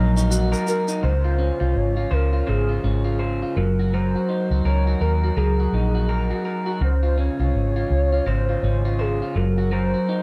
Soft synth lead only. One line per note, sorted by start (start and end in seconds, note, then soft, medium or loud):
0.00 0.31 C#5 loud
0.68 1.01 A#4 medium
1.05 1.79 C5 loud
1.77 2.14 C#5 loud
2.13 2.50 A#4 medium
2.48 3.20 G#4 medium
3.56 3.94 A#4 medium
3.93 4.67 C5 loud
4.66 5.01 C#5 loud
5.01 5.38 A#4 loud
5.37 6.09 G#4 medium
6.84 7.16 C5 medium
7.19 8.29 C#5 loud
8.28 9.02 C5 loud
9.00 9.38 G#4 medium
9.36 9.72 A#4 medium
9.72 10.23 C5 loud